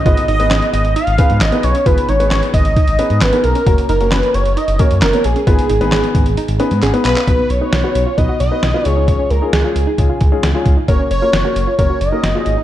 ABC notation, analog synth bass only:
X:1
M:4/4
L:1/16
Q:1/4=133
K:G#dor
V:1 name="Analog synth bass" clef=bass
G,,, z G,,, G,,, G,,, z G,,, G,,, z G,,, z G,, G,,, z B,,, z | G,,, z G,,, G,,, G,,, z G,,, G,,, z G,,, z G,, G,,, z B,,, z | F,,, z F,,, F,,, F,,, z F,,, F,,, z F,,, z F,, F,,, z A,,, z | G,,, z G,,, G,,, G,,, z G,,, G,,, z G,,, z G,, G,,, z B,,, z |
B,,, z B,,, z B,,, z B,,, z B,,, z B,,, z B,,, z C,,2- | C,, z C,, z C,, z C,, z C,, z C,, z C,, z C,, z | F,,, z F,,, z F,,, z F,,, z F,,, z F,,, z F,,, z G,,, z |]